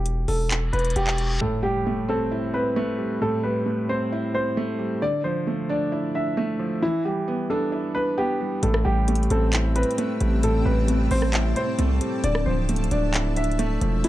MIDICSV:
0, 0, Header, 1, 8, 480
1, 0, Start_track
1, 0, Key_signature, 0, "minor"
1, 0, Tempo, 451128
1, 1500, Time_signature, 4, 2, 24, 8
1, 14987, End_track
2, 0, Start_track
2, 0, Title_t, "Ambient pad"
2, 0, Program_c, 0, 92
2, 9181, Note_on_c, 0, 79, 79
2, 9181, Note_on_c, 0, 81, 78
2, 9181, Note_on_c, 0, 88, 94
2, 9182, Note_on_c, 0, 60, 84
2, 11082, Note_off_c, 0, 88, 0
2, 11101, Note_on_c, 0, 86, 90
2, 12982, Note_off_c, 0, 79, 0
2, 12983, Note_off_c, 0, 60, 0
2, 13001, Note_off_c, 0, 86, 0
2, 13020, Note_on_c, 0, 76, 80
2, 13021, Note_on_c, 0, 74, 83
2, 13021, Note_on_c, 0, 88, 92
2, 14898, Note_off_c, 0, 81, 0
2, 14921, Note_off_c, 0, 76, 0
2, 14987, Note_off_c, 0, 74, 0
2, 14987, Note_off_c, 0, 88, 0
2, 14987, End_track
3, 0, Start_track
3, 0, Title_t, "Grand piano"
3, 0, Program_c, 1, 0
3, 0, Note_on_c, 1, 67, 71
3, 273, Note_off_c, 1, 67, 0
3, 299, Note_on_c, 1, 69, 78
3, 751, Note_off_c, 1, 69, 0
3, 774, Note_on_c, 1, 71, 91
3, 976, Note_off_c, 1, 71, 0
3, 1023, Note_on_c, 1, 67, 92
3, 1473, Note_off_c, 1, 67, 0
3, 1499, Note_on_c, 1, 69, 80
3, 1699, Note_off_c, 1, 69, 0
3, 1733, Note_on_c, 1, 67, 90
3, 2188, Note_off_c, 1, 67, 0
3, 2227, Note_on_c, 1, 69, 87
3, 2675, Note_off_c, 1, 69, 0
3, 2703, Note_on_c, 1, 71, 85
3, 3379, Note_off_c, 1, 71, 0
3, 3424, Note_on_c, 1, 69, 93
3, 3622, Note_off_c, 1, 69, 0
3, 3655, Note_on_c, 1, 71, 79
3, 4109, Note_off_c, 1, 71, 0
3, 4143, Note_on_c, 1, 72, 85
3, 4593, Note_off_c, 1, 72, 0
3, 4624, Note_on_c, 1, 72, 91
3, 5300, Note_off_c, 1, 72, 0
3, 5343, Note_on_c, 1, 74, 100
3, 5541, Note_off_c, 1, 74, 0
3, 5576, Note_on_c, 1, 72, 80
3, 6029, Note_off_c, 1, 72, 0
3, 6065, Note_on_c, 1, 74, 80
3, 6514, Note_off_c, 1, 74, 0
3, 6546, Note_on_c, 1, 76, 77
3, 7221, Note_off_c, 1, 76, 0
3, 7262, Note_on_c, 1, 64, 100
3, 7461, Note_off_c, 1, 64, 0
3, 7502, Note_on_c, 1, 67, 73
3, 7953, Note_off_c, 1, 67, 0
3, 7979, Note_on_c, 1, 69, 85
3, 8431, Note_off_c, 1, 69, 0
3, 8455, Note_on_c, 1, 71, 91
3, 8656, Note_off_c, 1, 71, 0
3, 8702, Note_on_c, 1, 67, 95
3, 9153, Note_off_c, 1, 67, 0
3, 9179, Note_on_c, 1, 69, 80
3, 9379, Note_off_c, 1, 69, 0
3, 9414, Note_on_c, 1, 67, 93
3, 9868, Note_off_c, 1, 67, 0
3, 9907, Note_on_c, 1, 69, 87
3, 10355, Note_off_c, 1, 69, 0
3, 10383, Note_on_c, 1, 71, 84
3, 11059, Note_off_c, 1, 71, 0
3, 11103, Note_on_c, 1, 69, 93
3, 11301, Note_off_c, 1, 69, 0
3, 11335, Note_on_c, 1, 71, 81
3, 11789, Note_off_c, 1, 71, 0
3, 11822, Note_on_c, 1, 72, 89
3, 12273, Note_off_c, 1, 72, 0
3, 12305, Note_on_c, 1, 72, 89
3, 12980, Note_off_c, 1, 72, 0
3, 13023, Note_on_c, 1, 74, 100
3, 13221, Note_off_c, 1, 74, 0
3, 13256, Note_on_c, 1, 72, 78
3, 13709, Note_off_c, 1, 72, 0
3, 13745, Note_on_c, 1, 74, 79
3, 14194, Note_off_c, 1, 74, 0
3, 14226, Note_on_c, 1, 76, 79
3, 14901, Note_off_c, 1, 76, 0
3, 14944, Note_on_c, 1, 64, 99
3, 14987, Note_off_c, 1, 64, 0
3, 14987, End_track
4, 0, Start_track
4, 0, Title_t, "Felt piano"
4, 0, Program_c, 2, 0
4, 1504, Note_on_c, 2, 45, 89
4, 1687, Control_c, 2, 64, 127
4, 1731, Note_on_c, 2, 55, 86
4, 1984, Note_on_c, 2, 57, 81
4, 2219, Note_on_c, 2, 60, 98
4, 2463, Note_on_c, 2, 64, 84
4, 2683, Note_off_c, 2, 60, 0
4, 2699, Note_on_c, 2, 60, 92
4, 2702, Note_off_c, 2, 45, 0
4, 2925, Note_off_c, 2, 57, 0
4, 2936, Note_off_c, 2, 55, 0
4, 2940, Note_on_c, 2, 57, 104
4, 3174, Note_on_c, 2, 55, 84
4, 3419, Note_on_c, 2, 45, 85
4, 3644, Note_off_c, 2, 55, 0
4, 3660, Note_on_c, 2, 55, 81
4, 3661, Note_off_c, 2, 64, 0
4, 3877, Note_off_c, 2, 57, 0
4, 3893, Note_on_c, 2, 57, 76
4, 3900, Note_off_c, 2, 60, 0
4, 4142, Note_on_c, 2, 60, 95
4, 4388, Note_on_c, 2, 64, 90
4, 4605, Note_off_c, 2, 60, 0
4, 4620, Note_off_c, 2, 45, 0
4, 4621, Note_on_c, 2, 60, 83
4, 4849, Note_off_c, 2, 57, 0
4, 4860, Note_off_c, 2, 55, 0
4, 4865, Note_on_c, 2, 57, 103
4, 5094, Note_on_c, 2, 55, 84
4, 5337, Note_off_c, 2, 55, 0
4, 5339, Note_on_c, 2, 50, 89
4, 5341, Note_off_c, 2, 60, 0
4, 5343, Note_off_c, 2, 57, 0
4, 5344, Note_off_c, 2, 64, 0
4, 5354, Control_c, 2, 64, 0
4, 5510, Control_c, 2, 64, 127
4, 5580, Note_on_c, 2, 53, 83
4, 5822, Note_on_c, 2, 57, 80
4, 6059, Note_on_c, 2, 62, 102
4, 6300, Note_on_c, 2, 64, 84
4, 6524, Note_off_c, 2, 62, 0
4, 6540, Note_off_c, 2, 50, 0
4, 6540, Note_on_c, 2, 62, 85
4, 6764, Note_off_c, 2, 57, 0
4, 6780, Note_off_c, 2, 53, 0
4, 6780, Note_on_c, 2, 57, 100
4, 7015, Note_on_c, 2, 53, 82
4, 7258, Note_off_c, 2, 53, 0
4, 7260, Note_off_c, 2, 57, 0
4, 7260, Note_off_c, 2, 62, 0
4, 7260, Note_off_c, 2, 64, 0
4, 7260, Note_on_c, 2, 52, 87
4, 7275, Control_c, 2, 64, 0
4, 7444, Control_c, 2, 64, 127
4, 7507, Note_on_c, 2, 55, 76
4, 7744, Note_on_c, 2, 59, 89
4, 7984, Note_on_c, 2, 62, 106
4, 8216, Note_on_c, 2, 64, 81
4, 8446, Note_off_c, 2, 62, 0
4, 8460, Note_off_c, 2, 52, 0
4, 8462, Note_on_c, 2, 62, 81
4, 8683, Note_off_c, 2, 59, 0
4, 8699, Note_on_c, 2, 59, 98
4, 8704, Note_off_c, 2, 55, 0
4, 8944, Note_on_c, 2, 55, 78
4, 9178, Note_off_c, 2, 64, 0
4, 9180, Note_off_c, 2, 59, 0
4, 9181, Note_off_c, 2, 62, 0
4, 9182, Note_off_c, 2, 55, 0
4, 9185, Note_on_c, 2, 45, 90
4, 9196, Control_c, 2, 64, 0
4, 9365, Control_c, 2, 64, 127
4, 9412, Note_on_c, 2, 55, 87
4, 9664, Note_on_c, 2, 57, 84
4, 9899, Note_on_c, 2, 60, 98
4, 10143, Note_on_c, 2, 64, 79
4, 10364, Note_off_c, 2, 60, 0
4, 10380, Note_on_c, 2, 60, 93
4, 10383, Note_off_c, 2, 45, 0
4, 10606, Note_off_c, 2, 57, 0
4, 10616, Note_off_c, 2, 55, 0
4, 10622, Note_on_c, 2, 57, 98
4, 10855, Note_on_c, 2, 55, 82
4, 11101, Note_on_c, 2, 45, 89
4, 11325, Note_off_c, 2, 55, 0
4, 11341, Note_on_c, 2, 55, 82
4, 11342, Note_off_c, 2, 64, 0
4, 11559, Note_off_c, 2, 57, 0
4, 11575, Note_on_c, 2, 57, 75
4, 11580, Note_off_c, 2, 60, 0
4, 11824, Note_on_c, 2, 60, 98
4, 12069, Note_on_c, 2, 64, 88
4, 12286, Note_off_c, 2, 60, 0
4, 12301, Note_off_c, 2, 45, 0
4, 12302, Note_on_c, 2, 60, 84
4, 12529, Note_off_c, 2, 57, 0
4, 12541, Note_off_c, 2, 55, 0
4, 12545, Note_on_c, 2, 57, 97
4, 12775, Note_on_c, 2, 55, 80
4, 13018, Note_off_c, 2, 55, 0
4, 13020, Note_on_c, 2, 50, 88
4, 13021, Note_off_c, 2, 60, 0
4, 13023, Note_off_c, 2, 57, 0
4, 13025, Note_off_c, 2, 64, 0
4, 13034, Control_c, 2, 64, 0
4, 13242, Control_c, 2, 64, 127
4, 13262, Note_on_c, 2, 53, 81
4, 13503, Note_on_c, 2, 57, 79
4, 13740, Note_on_c, 2, 62, 101
4, 13981, Note_on_c, 2, 64, 88
4, 14206, Note_off_c, 2, 62, 0
4, 14220, Note_off_c, 2, 50, 0
4, 14222, Note_on_c, 2, 62, 85
4, 14444, Note_off_c, 2, 57, 0
4, 14460, Note_on_c, 2, 57, 102
4, 14461, Note_off_c, 2, 53, 0
4, 14696, Note_on_c, 2, 53, 82
4, 14938, Note_off_c, 2, 53, 0
4, 14940, Note_off_c, 2, 57, 0
4, 14940, Note_on_c, 2, 52, 85
4, 14941, Note_off_c, 2, 62, 0
4, 14941, Note_off_c, 2, 64, 0
4, 14953, Control_c, 2, 64, 0
4, 14987, Note_off_c, 2, 52, 0
4, 14987, End_track
5, 0, Start_track
5, 0, Title_t, "808-style bass"
5, 0, Program_c, 3, 38
5, 0, Note_on_c, 3, 28, 105
5, 281, Note_off_c, 3, 28, 0
5, 300, Note_on_c, 3, 28, 103
5, 761, Note_off_c, 3, 28, 0
5, 780, Note_on_c, 3, 28, 105
5, 1011, Note_off_c, 3, 28, 0
5, 1020, Note_on_c, 3, 28, 107
5, 1481, Note_off_c, 3, 28, 0
5, 9181, Note_on_c, 3, 33, 113
5, 9411, Note_off_c, 3, 33, 0
5, 9421, Note_on_c, 3, 33, 108
5, 9881, Note_off_c, 3, 33, 0
5, 9901, Note_on_c, 3, 33, 106
5, 10477, Note_off_c, 3, 33, 0
5, 10861, Note_on_c, 3, 33, 103
5, 11321, Note_off_c, 3, 33, 0
5, 11341, Note_on_c, 3, 33, 111
5, 11801, Note_off_c, 3, 33, 0
5, 11821, Note_on_c, 3, 33, 107
5, 12281, Note_off_c, 3, 33, 0
5, 12541, Note_on_c, 3, 36, 106
5, 12771, Note_off_c, 3, 36, 0
5, 13020, Note_on_c, 3, 26, 117
5, 13251, Note_off_c, 3, 26, 0
5, 13261, Note_on_c, 3, 26, 111
5, 13721, Note_off_c, 3, 26, 0
5, 13740, Note_on_c, 3, 26, 110
5, 14662, Note_off_c, 3, 26, 0
5, 14700, Note_on_c, 3, 28, 104
5, 14931, Note_off_c, 3, 28, 0
5, 14987, End_track
6, 0, Start_track
6, 0, Title_t, "Impact"
6, 0, Program_c, 4, 103
6, 1500, Note_on_c, 4, 60, 91
6, 3420, Note_off_c, 4, 60, 0
6, 14987, End_track
7, 0, Start_track
7, 0, Title_t, "Reverse cymbal"
7, 0, Program_c, 5, 119
7, 540, Note_on_c, 5, 60, 86
7, 1500, Note_off_c, 5, 60, 0
7, 14987, End_track
8, 0, Start_track
8, 0, Title_t, "Drums"
8, 60, Note_on_c, 9, 42, 82
8, 166, Note_off_c, 9, 42, 0
8, 299, Note_on_c, 9, 46, 50
8, 405, Note_off_c, 9, 46, 0
8, 540, Note_on_c, 9, 42, 69
8, 541, Note_on_c, 9, 39, 117
8, 646, Note_off_c, 9, 42, 0
8, 647, Note_off_c, 9, 39, 0
8, 780, Note_on_c, 9, 42, 43
8, 840, Note_off_c, 9, 42, 0
8, 840, Note_on_c, 9, 42, 49
8, 900, Note_off_c, 9, 42, 0
8, 900, Note_on_c, 9, 42, 62
8, 959, Note_off_c, 9, 42, 0
8, 959, Note_on_c, 9, 42, 71
8, 1020, Note_off_c, 9, 42, 0
8, 1020, Note_on_c, 9, 42, 90
8, 1126, Note_off_c, 9, 42, 0
8, 1140, Note_on_c, 9, 39, 96
8, 1246, Note_off_c, 9, 39, 0
8, 1258, Note_on_c, 9, 42, 77
8, 1364, Note_off_c, 9, 42, 0
8, 9180, Note_on_c, 9, 42, 88
8, 9287, Note_off_c, 9, 42, 0
8, 9300, Note_on_c, 9, 37, 97
8, 9406, Note_off_c, 9, 37, 0
8, 9660, Note_on_c, 9, 42, 85
8, 9740, Note_off_c, 9, 42, 0
8, 9740, Note_on_c, 9, 42, 67
8, 9821, Note_off_c, 9, 42, 0
8, 9821, Note_on_c, 9, 42, 49
8, 9899, Note_off_c, 9, 42, 0
8, 9899, Note_on_c, 9, 42, 73
8, 10006, Note_off_c, 9, 42, 0
8, 10140, Note_on_c, 9, 42, 72
8, 10141, Note_on_c, 9, 39, 117
8, 10247, Note_off_c, 9, 39, 0
8, 10247, Note_off_c, 9, 42, 0
8, 10380, Note_on_c, 9, 42, 71
8, 10460, Note_off_c, 9, 42, 0
8, 10460, Note_on_c, 9, 42, 57
8, 10540, Note_off_c, 9, 42, 0
8, 10540, Note_on_c, 9, 42, 43
8, 10620, Note_off_c, 9, 42, 0
8, 10620, Note_on_c, 9, 42, 93
8, 10727, Note_off_c, 9, 42, 0
8, 10858, Note_on_c, 9, 42, 73
8, 10965, Note_off_c, 9, 42, 0
8, 11100, Note_on_c, 9, 42, 90
8, 11206, Note_off_c, 9, 42, 0
8, 11580, Note_on_c, 9, 42, 83
8, 11686, Note_off_c, 9, 42, 0
8, 11819, Note_on_c, 9, 46, 53
8, 11925, Note_off_c, 9, 46, 0
8, 11939, Note_on_c, 9, 37, 70
8, 12046, Note_off_c, 9, 37, 0
8, 12060, Note_on_c, 9, 42, 74
8, 12061, Note_on_c, 9, 39, 119
8, 12166, Note_off_c, 9, 42, 0
8, 12167, Note_off_c, 9, 39, 0
8, 12302, Note_on_c, 9, 42, 70
8, 12408, Note_off_c, 9, 42, 0
8, 12541, Note_on_c, 9, 42, 93
8, 12647, Note_off_c, 9, 42, 0
8, 12778, Note_on_c, 9, 42, 78
8, 12885, Note_off_c, 9, 42, 0
8, 13020, Note_on_c, 9, 42, 90
8, 13126, Note_off_c, 9, 42, 0
8, 13140, Note_on_c, 9, 37, 98
8, 13246, Note_off_c, 9, 37, 0
8, 13500, Note_on_c, 9, 42, 85
8, 13580, Note_off_c, 9, 42, 0
8, 13580, Note_on_c, 9, 42, 69
8, 13660, Note_off_c, 9, 42, 0
8, 13660, Note_on_c, 9, 42, 51
8, 13739, Note_off_c, 9, 42, 0
8, 13739, Note_on_c, 9, 42, 75
8, 13845, Note_off_c, 9, 42, 0
8, 13980, Note_on_c, 9, 42, 74
8, 13981, Note_on_c, 9, 39, 113
8, 14086, Note_off_c, 9, 42, 0
8, 14087, Note_off_c, 9, 39, 0
8, 14220, Note_on_c, 9, 42, 70
8, 14300, Note_off_c, 9, 42, 0
8, 14300, Note_on_c, 9, 42, 55
8, 14380, Note_off_c, 9, 42, 0
8, 14380, Note_on_c, 9, 42, 43
8, 14460, Note_off_c, 9, 42, 0
8, 14460, Note_on_c, 9, 42, 90
8, 14567, Note_off_c, 9, 42, 0
8, 14698, Note_on_c, 9, 42, 74
8, 14805, Note_off_c, 9, 42, 0
8, 14940, Note_on_c, 9, 42, 91
8, 14987, Note_off_c, 9, 42, 0
8, 14987, End_track
0, 0, End_of_file